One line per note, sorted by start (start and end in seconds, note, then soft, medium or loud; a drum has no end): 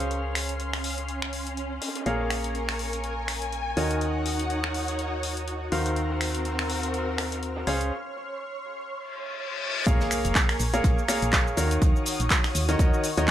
0.00 1.80 C#2 medium
0.00 2.04 C#4 medium
0.00 4.56 C#4 medium
0.00 2.04 G#4 medium
0.00 0.76 A#4 medium
0.00 2.04 C5 medium
0.00 2.04 C#5 medium
0.00 2.04 F5 medium
0.00 2.04 C6 medium
0.00 2.04 F6 medium
0.00 closed hi-hat medium
0.11 closed hi-hat soft
0.35 finger snap medium
0.35 open hi-hat loud
0.49 closed hi-hat medium
0.60 closed hi-hat soft
0.60 closed hi-hat medium
0.73 finger snap medium
0.73 snare soft
0.73 open hi-hat medium
0.84 closed hi-hat medium
0.84 open hi-hat loud
0.98 snare soft
0.98 closed hi-hat medium
1.08 closed hi-hat medium
1.08 closed hi-hat soft
1.22 finger snap medium
1.33 closed hi-hat medium
1.33 open hi-hat loud
1.47 closed hi-hat medium
1.57 closed hi-hat medium
1.57 closed hi-hat soft
1.82 snare medium
1.82 open hi-hat loud
1.88 snare medium
1.95 snare medium
1.95 closed hi-hat medium
2.01 snare medium
2.06 3.75 A#1 medium
2.06 3.74 A#3 medium
2.06 3.74 G#4 medium
2.06 3.75 A#4 medium
2.06 3.74 A#4 medium
2.06 3.74 C#5 medium
2.06 3.74 F5 medium
2.06 3.75 G#5 medium
2.06 3.75 C#6 medium
2.06 closed hi-hat soft
2.20 4.56 A#4 medium
2.20 snare soft
2.30 finger snap medium
2.30 open hi-hat loud
2.44 closed hi-hat medium
2.55 closed hi-hat medium
2.55 closed hi-hat soft
2.69 finger snap medium
2.69 open hi-hat medium
2.79 4.56 G#5 medium
2.79 closed hi-hat medium
2.79 open hi-hat medium
2.93 closed hi-hat medium
3.04 closed hi-hat soft
3.04 closed hi-hat medium
3.28 finger snap medium
3.28 open hi-hat loud
3.42 closed hi-hat medium
3.52 closed hi-hat medium
3.52 closed hi-hat soft
3.77 5.70 D#2 medium
3.77 5.69 D#3 medium
3.77 6.51 D#4 medium
3.77 5.69 F#4 medium
3.77 7.63 F#4 medium
3.77 5.69 A#4 medium
3.77 5.69 C#5 medium
3.77 5.70 C#5 medium
3.77 5.69 D#5 medium
3.77 5.70 D#6 medium
3.77 closed hi-hat medium
3.77 open hi-hat loud
3.91 5.72 F#5 medium
3.91 closed hi-hat medium
4.01 closed hi-hat medium
4.01 closed hi-hat soft
4.25 closed hi-hat medium
4.25 open hi-hat loud
4.39 5.72 C#5 medium
4.39 closed hi-hat medium
4.50 closed hi-hat medium
4.50 closed hi-hat soft
4.64 finger snap medium
4.64 snare soft
4.74 closed hi-hat medium
4.74 open hi-hat medium
4.88 snare soft
4.88 closed hi-hat medium
4.99 closed hi-hat soft
4.99 closed hi-hat medium
5.23 closed hi-hat medium
5.23 open hi-hat loud
5.37 closed hi-hat medium
5.48 closed hi-hat soft
5.48 closed hi-hat medium
5.72 7.65 D#2 medium
5.72 7.65 D#3 medium
5.72 7.67 C4 medium
5.72 7.65 F#4 medium
5.72 7.65 A#4 medium
5.72 7.65 C5 medium
5.72 7.65 F5 medium
5.72 7.65 A#5 medium
5.72 9.83 F6 medium
5.72 closed hi-hat medium
5.72 open hi-hat loud
5.86 closed hi-hat medium
5.94 7.67 F#4 medium
5.94 closed hi-hat medium
5.94 closed hi-hat soft
6.10 snare soft
6.21 7.92 A#4 medium
6.21 finger snap medium
6.21 open hi-hat loud
6.35 closed hi-hat medium
6.45 closed hi-hat medium
6.59 finger snap medium
6.59 open hi-hat medium
6.70 open hi-hat loud
6.83 closed hi-hat medium
6.94 closed hi-hat medium
6.94 closed hi-hat soft
7.18 finger snap medium
7.18 snare medium
7.18 open hi-hat medium
7.32 snare soft
7.32 closed hi-hat medium
7.43 closed hi-hat soft
7.43 closed hi-hat medium
7.56 snare medium
7.56 closed hi-hat medium
7.67 7.92 C#2 medium
7.67 7.91 C#4 medium
7.67 7.92 C#4 medium
7.67 7.91 G#4 medium
7.67 7.91 C5 medium
7.67 7.91 C#5 medium
7.67 9.84 C#5 medium
7.67 7.91 F5 medium
7.67 9.84 C6 medium
7.67 snare soft
7.67 open hi-hat medium
7.80 closed hi-hat medium
8.89 reverse cymbal medium
9.87 9.98 A#1 loud
9.87 10.60 A#3 loud
9.87 10.60 G#4 medium
9.87 10.60 A#4 medium
9.87 11.56 A#4 medium
9.87 10.60 C#5 medium
9.87 10.60 F5 loud
9.87 11.56 G#5 medium
9.87 11.56 C#6 medium
9.87 kick loud
9.87 closed hi-hat medium
9.87 impact medium
9.87 shaker soft
10.00 snare medium
10.00 shaker soft
10.11 finger snap medium
10.11 closed hi-hat medium
10.11 open hi-hat loud
10.11 shaker medium
10.25 10.34 F1 medium
10.25 closed hi-hat medium
10.25 shaker soft
10.35 kick loud
10.35 snare loud
10.35 clap loud
10.35 closed hi-hat medium
10.35 shaker soft
10.49 finger snap medium
10.49 open hi-hat medium
10.49 shaker soft
10.59 10.81 A#1 medium
10.59 closed hi-hat medium
10.59 open hi-hat loud
10.59 shaker medium
10.74 11.00 A#3 medium
10.74 11.00 G#4 medium
10.74 11.00 A#4 medium
10.74 11.00 C#5 medium
10.74 11.00 F5 loud
10.74 closed hi-hat medium
10.74 shaker soft
10.84 10.96 A#1 medium
10.84 kick loud
10.84 closed hi-hat loud
10.84 closed hi-hat medium
10.84 shaker soft
10.99 shaker soft
11.08 11.30 A#3 medium
11.08 11.30 G#4 medium
11.08 11.30 A#4 medium
11.08 11.30 C#5 medium
11.08 11.30 F5 medium
11.08 finger snap medium
11.08 closed hi-hat medium
11.08 open hi-hat loud
11.08 shaker medium
11.22 11.55 A#1 medium
11.22 closed hi-hat soft
11.22 closed hi-hat medium
11.22 shaker soft
11.33 11.55 G#4 medium
11.33 11.55 A#4 medium
11.33 11.55 C#5 medium
11.33 11.55 F5 medium
11.33 kick loud
11.33 snare loud
11.33 clap loud
11.33 closed hi-hat medium
11.33 shaker soft
11.47 shaker soft
11.57 11.78 D#2 medium
11.57 12.65 D#3 medium
11.57 12.65 F#4 medium
11.57 13.31 F#4 medium
11.57 12.65 A#4 medium
11.57 12.65 C#5 medium
11.57 13.31 C#5 medium
11.57 12.65 F5 medium
11.57 13.31 D#6 medium
11.57 closed hi-hat medium
11.57 open hi-hat loud
11.57 shaker medium
11.71 closed hi-hat medium
11.71 shaker soft
11.82 11.93 D#2 loud
11.82 kick loud
11.82 closed hi-hat medium
11.82 shaker soft
11.96 shaker soft
12.06 closed hi-hat medium
12.06 open hi-hat loud
12.06 shaker medium
12.20 12.29 A#1 medium
12.20 closed hi-hat medium
12.20 shaker soft
12.30 kick loud
12.30 snare loud
12.30 clap loud
12.30 closed hi-hat medium
12.30 shaker soft
12.44 finger snap medium
12.44 snare soft
12.44 open hi-hat medium
12.44 shaker soft
12.55 12.76 D#2 medium
12.55 closed hi-hat medium
12.55 open hi-hat loud
12.55 shaker medium
12.69 12.77 D#3 medium
12.69 12.77 F#4 medium
12.69 12.77 A#4 medium
12.69 12.77 C#5 medium
12.69 12.77 D#5 medium
12.69 snare soft
12.69 closed hi-hat medium
12.69 shaker soft
12.79 12.91 D#2 medium
12.79 13.07 D#3 medium
12.79 13.07 F#4 medium
12.79 13.07 A#4 medium
12.79 13.07 C#5 medium
12.79 13.07 D#5 medium
12.79 kick loud
12.79 closed hi-hat medium
12.79 shaker soft
12.94 shaker soft
13.04 closed hi-hat medium
13.04 open hi-hat loud
13.04 shaker medium
13.17 13.31 D#2 medium
13.17 13.31 D#3 medium
13.17 13.31 F#4 medium
13.17 13.31 A#4 medium
13.17 13.31 C#5 medium
13.17 13.31 D#5 medium
13.17 closed hi-hat medium
13.17 shaker soft